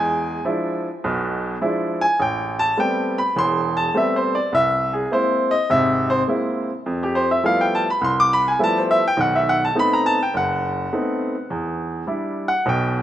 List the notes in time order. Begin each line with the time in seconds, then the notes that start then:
Already playing: E2 G#3 G#5
0.45 F3 G#3 D4 E4
1.04 B1 B2
1.61 F3 G#3 D4 E4
2.01 G#5
2.20 A1 G5
2.59 A5
2.77 G3 A3 B3 C4 G5
3.18 B5
3.36 E1 E2 C6
3.77 A5
3.94 G3 A3 B3 C4 E5
4.16 C5
4.35 D5
4.52 C2 E5
4.93 G#4
5.11 G#3 A#3 C4 E4 C5
5.51 D#5
5.70 G#1 C3 E5
6.10 C5
6.27 G#3 A#3 C4 E4
6.86 F2
7.03 G4
7.15 C5
7.31 E5
7.44 F3 G3 A3 B3 E4 F5
7.61 G5
7.75 A5
7.90 B5
8.01 C2 C6
8.20 D6
8.33 B5
8.48 G#5
8.59 F3 G3 A3 B3 E4
8.64 A5
8.78 C5
8.91 E5
9.08 G5
9.17 B1 D#3 F#5
9.36 E5
9.49 F#5
9.65 A5
9.75 A3 B3 C4 D#4
9.79 B5
9.93 A#5
10.06 A5
10.23 G5
10.34 F#1 F#5
10.92 A3 B3 C4 D#4
11.50 E2
12.07 G3 D4 E4
12.48 F#5
12.66 B1 B2 G5